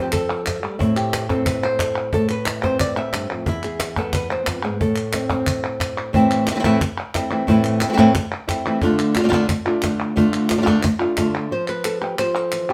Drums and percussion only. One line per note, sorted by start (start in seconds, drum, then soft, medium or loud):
0.12 cajon bass medium
0.12 clap medium
0.30 cajon slap soft
0.30 clap soft
0.46 cajon bass medium
0.46 cajon slap medium
0.46 clap medium
0.63 clap medium
0.80 cajon bass loud
0.96 cajon slap soft
0.96 clap medium
1.13 cajon slap loud
1.13 clap medium
1.30 cajon bass medium
1.30 cajon slap soft
1.46 cajon bass loud
1.46 clap medium
1.63 cajon slap soft
1.79 cajon bass medium
1.79 cajon slap loud
1.79 clap medium
1.96 clap soft
2.13 cajon bass loud
2.29 clap medium
2.46 cajon slap loud
2.46 clap medium
2.64 cajon bass medium
2.64 cajon slap soft
2.80 cajon bass medium
2.80 clap medium
2.97 cajon slap soft
3.13 cajon slap medium
3.13 clap medium
3.46 cajon bass loud
3.63 clap medium
3.80 cajon slap loud
3.80 clap medium
3.96 cajon bass medium
3.96 cajon slap soft
3.96 clap medium
4.13 cajon bass loud
4.13 clap medium
4.46 cajon bass medium
4.46 cajon slap loud
4.46 clap medium
4.81 cajon bass loud
4.96 cajon slap soft
4.96 clap medium
5.13 cajon slap loud
5.13 clap medium
5.30 cajon bass medium
5.30 cajon slap soft
5.47 cajon bass loud
5.47 clap medium
5.63 cajon slap soft
5.80 cajon bass medium
5.80 cajon slap loud
5.80 clap medium
6.14 cajon bass loud
6.31 clap medium
6.47 cajon slap loud
6.47 clap medium
6.64 cajon bass medium
6.81 cajon bass loud
6.81 clap medium
7.15 cajon bass medium
7.15 cajon slap loud
7.15 clap medium
7.48 cajon bass loud
7.64 clap medium
7.81 cajon slap loud
7.81 clap medium
7.98 cajon bass medium
7.98 cajon slap soft
8.15 cajon bass loud
8.15 clap medium
8.49 cajon bass medium
8.49 cajon slap medium
8.49 clap medium
8.82 cajon bass loud
8.99 clap medium
9.15 cajon slap loud
9.15 clap medium
9.32 cajon bass medium
9.49 cajon bass loud
9.49 clap medium
9.66 cajon slap soft
9.66 clap medium
9.82 cajon bass medium
9.82 cajon slap loud
9.82 clap medium
10.17 cajon bass loud
10.33 cajon slap soft
10.33 clap medium
10.49 cajon slap loud
10.49 clap medium
10.67 cajon bass medium
10.67 cajon slap soft
10.83 cajon bass loud
10.83 clap medium
11.17 cajon bass medium
11.17 cajon slap medium
11.17 clap medium
11.68 clap medium
11.85 clap medium
12.02 clap soft
12.18 clap medium
12.52 clap medium
12.69 clap soft